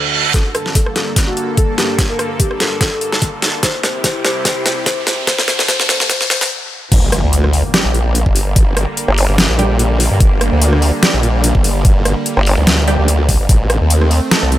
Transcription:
Already playing: D2 D3 F#4 A4 D5, reverse cymbal
0.34 G2 D3 A#3 A4, kick, snare, closed hi-hat, riser
0.55 A4, cross-stick, closed hi-hat
0.66 snare
0.75 A4, kick, closed hi-hat
0.86 cross-stick
0.96 A4, snare, closed hi-hat
1.16 kick, snare, closed hi-hat
1.27 F#4
1.37 closed hi-hat
1.57 A4, kick, closed hi-hat
1.78 G4, snare, closed hi-hat
1.99 kick, snare, closed hi-hat
2.10 A#4
2.19 cross-stick, closed hi-hat
2.40 G4, kick, closed hi-hat
2.51 cross-stick
2.60 A4, snare, closed hi-hat
2.81 A4, kick, snare, closed hi-hat
3.01 closed hi-hat
3.12 snare
3.22 kick, closed hi-hat
3.42 snare, closed hi-hat
3.63 C2 C3 E4 G4 C5, kick, snare, closed hi-hat
3.83 C5, snare, closed hi-hat
4.04 C5, kick, snare, closed hi-hat
4.24 C5, snare, closed hi-hat
4.45 C5, kick, snare, closed hi-hat
4.66 C5, snare, closed hi-hat
4.86 C5, kick, snare, closed hi-hat
5.07 C5, snare, closed hi-hat
5.27 D2 D3 F#4 A4 C5, kick, snare, closed hi-hat
5.38 snare
5.48 C5, snare, closed hi-hat
5.59 snare
5.68 C5, kick, snare, closed hi-hat
5.80 snare
5.89 C5, snare, closed hi-hat
6.00 snare
6.09 C5, kick, snare, closed hi-hat
6.21 snare
6.30 C5, snare, closed hi-hat
6.41 snare
6.92 G1 D3 G3 A#3, kick, closed hi-hat, crash, impact
7.12 cross-stick, closed hi-hat
7.23 D2
7.33 closed hi-hat
7.44 cross-stick
7.53 open hi-hat
7.74 G3 D4 G4, snare, closed hi-hat
7.85 A#1
7.94 closed hi-hat
8.15 closed hi-hat
8.26 G1, kick
8.36 open hi-hat
8.56 G1, kick, closed hi-hat
8.77 cross-stick, closed hi-hat
8.97 closed hi-hat
9.08 G1, cross-stick
9.18 open hi-hat
9.29 G1
9.38 snare, closed hi-hat
9.49 A#1
9.59 G3 D4 G4, closed hi-hat
9.79 closed hi-hat
10.00 open hi-hat
10.11 G2
10.20 G1, kick, closed hi-hat
10.41 cross-stick, closed hi-hat
10.52 D2
10.62 closed hi-hat
10.73 cross-stick
10.82 open hi-hat
11.03 G3 D4 G4, snare, closed hi-hat
11.14 A#1
11.23 closed hi-hat
11.44 closed hi-hat
11.55 G1, kick
11.64 open hi-hat
11.85 G1, kick, closed hi-hat
12.05 cross-stick, closed hi-hat
12.26 closed hi-hat
12.37 G1, cross-stick
12.46 open hi-hat
12.58 D2
12.67 snare, closed hi-hat
12.88 G3 D4 G4, closed hi-hat
12.99 D2
13.08 closed hi-hat
13.29 kick, open hi-hat
13.40 G1
13.49 A1 D#3 A3 C4, kick, closed hi-hat
13.70 cross-stick, closed hi-hat
13.81 D#2
13.90 closed hi-hat
14.01 cross-stick
14.11 open hi-hat
14.31 A3 D#4 A4, snare, closed hi-hat
14.43 C2
14.52 closed hi-hat

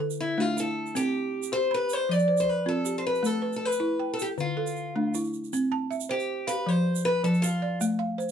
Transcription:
Already playing: D3
0.00 A4
0.10 shaker
0.20 E4
0.38 A3 D4 F4
0.57 E4 A4, shaker
0.86 shaker
0.95 C4 G4, shaker
1.43 shaker
1.52 G4 C5
1.71 B4 B5
1.89 C5, shaker
2.09 F3 D5
2.19 shaker
2.28 C5
2.37 C5, shaker
2.49 B4
2.66 C4 F4 A4
2.85 G4, shaker
2.98 C5
3.06 B4
3.15 shaker
3.23 A3 A4, shaker
3.42 B4
3.53 A4, shaker
3.65 B4
3.72 shaker
3.80 E4
4.00 G5
4.14 A4
4.19 G4, shaker
4.38 D3 F4, shaker
4.57 A4
4.67 shaker
4.76 shaker
4.96 A3 D4
5.14 E4, shaker
5.33 shaker
5.44 shaker
5.53 C4, shaker
5.72 A5
5.91 E5, shaker
6.00 shaker
6.09 G4 C5
6.20 shaker
6.47 B4 F5, shaker
6.66 F3 C5
6.95 shaker
7.05 B4
7.24 F3 A4, shaker
7.34 shaker
7.42 F4, shaker
7.62 D5
7.81 A3, shaker
7.99 F5
8.18 C5, shaker

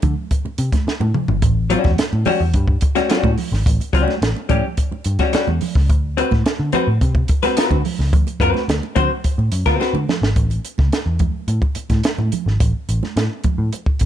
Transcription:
0.02 D3, kick, closed hi-hat, high conga, low conga
0.31 kick, closed hi-hat
0.45 muted picked electric bass stroke, muted conga
0.58 C3, closed hi-hat
0.72 kick, snare, closed hi-hat, high conga
0.87 muted picked electric bass stroke, snare, muted conga
1.00 A2, high tom, high conga
1.14 mid tom, low conga
1.28 G#1, floor tom
1.42 A1, kick, closed hi-hat
1.70 G3 C#4 F#4, closed hi-hat
1.84 E2, kick, snare, high conga
1.98 muted picked electric bass stroke, snare, closed hi-hat, muted conga
2.13 A2, muted conga
2.25 G3 C#4 F#4, open hi-hat, high conga, low conga
2.41 E2
2.54 G2, kick, closed hi-hat
2.68 kick
2.81 kick, closed hi-hat
2.95 G3 C#4 F#4, snare, closed hi-hat, high conga
3.09 G3 C#4 F#4, snare, closed hi-hat, muted conga
3.23 A2, kick, muted conga, high conga
3.38 open hi-hat, low conga
3.52 G#1, snare
3.66 A1, kick, closed hi-hat, muted conga
3.80 closed hi-hat, muted conga
3.93 C#2 G3 C#4 F#4, kick, closed hi-hat
4.08 snare, high conga
4.22 A1, snare, closed hi-hat
4.36 muted conga
4.49 A2 G3 C#4 G4, kick, closed hi-hat, high conga, low conga
4.77 kick, closed hi-hat
4.92 muted picked electric bass stroke, muted conga
5.04 G2, closed hi-hat
5.19 G3 C#4 F#4, kick, snare, closed hi-hat, high conga
5.33 G3 C#4 F#4, muted picked electric bass stroke, snare, closed hi-hat
5.48 E2, high conga
5.61 open hi-hat, low conga
5.75 C#2, kick, snare
5.90 D2, kick, closed hi-hat
6.17 C4 F#4 B4, closed hi-hat
6.31 A2, kick, snare, high conga
6.46 muted picked electric bass stroke, snare, closed hi-hat, muted conga
6.59 D3
6.72 C4 F#4 B4, closed hi-hat, high conga, low conga
6.87 A2
7.01 C3, kick, closed hi-hat
7.15 kick, muted conga
7.28 kick, closed hi-hat
7.43 C4 F#4 B4, snare, closed hi-hat, high conga
7.57 C4 F#4 B4, snare, closed hi-hat, muted conga
7.71 D3, kick, muted conga, high conga
7.85 open hi-hat, low conga
7.99 C#2, snare
8.13 D2, kick, closed hi-hat, low conga
8.27 closed hi-hat, muted conga
8.40 F#2 C4 F#4 B4, kick, closed hi-hat
8.54 snare, high conga
8.68 D2, snare, closed hi-hat, muted conga
8.83 muted conga
8.95 D3 C4 F#4 C5, kick, closed hi-hat, high conga, low conga
9.24 kick, closed hi-hat
9.38 A2, muted conga
9.52 F#2, closed hi-hat
9.66 D2 C4 F#4 B4, kick, snare, closed hi-hat, high conga
9.80 C4 F#4 B4, snare, muted conga
9.94 D3, muted conga, high conga
10.09 snare, low conga
10.22 G#1, snare
10.36 A1, kick, closed hi-hat
10.50 closed hi-hat, muted conga
10.65 closed hi-hat
10.78 C#2, kick, snare, high conga
10.92 snare, closed hi-hat
11.06 E2
11.19 kick, closed hi-hat, high conga, low conga
11.48 A2, closed hi-hat, muted conga
11.62 kick, muted conga
11.75 muted picked electric bass stroke, closed hi-hat
11.90 A2, kick, snare, closed hi-hat, high conga
12.04 snare, closed hi-hat
12.18 A2, high conga
12.32 closed hi-hat, low conga
12.46 G#1, snare
12.60 A1, kick, closed hi-hat, muted conga
12.89 A1, closed hi-hat
13.03 snare, high conga
13.16 A2, snare, closed hi-hat
13.44 muted picked electric bass stroke, kick, closed hi-hat, high conga, low conga
13.58 A2
13.73 closed hi-hat, muted conga
13.86 kick
13.99 A1, kick, closed hi-hat

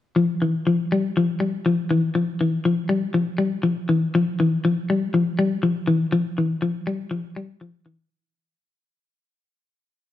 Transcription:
0.16 F3
0.42 E3
0.67 F3
0.92 G3
1.17 F3
1.40 G3
1.66 F3
1.91 E3
2.15 F3
2.41 E3
2.65 F3
2.89 G3
3.14 F3
3.38 G3
3.63 F3
3.89 E3
4.15 F3
4.40 E3
4.65 F3
4.90 G3
5.14 F3
5.39 G3
5.63 F3
5.88 E3
6.12 F3
6.38 E3
6.62 F3
6.87 G3
7.11 F3
7.36 G3
7.61 F3
7.86 E3

